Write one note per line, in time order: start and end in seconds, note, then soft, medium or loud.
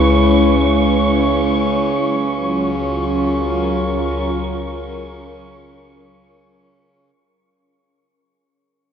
0.00 1.90 C#2 medium
0.00 7.11 C#3 medium
0.00 1.95 G#3 medium
0.00 7.02 C#4 medium
0.00 1.95 E4 medium
0.00 1.95 B4 medium
0.00 7.01 C#5 medium
0.00 7.01 C#6 medium
1.95 6.97 C#2 medium
1.95 7.02 F#3 medium
2.13 7.02 F4 medium
2.98 7.02 A#4 medium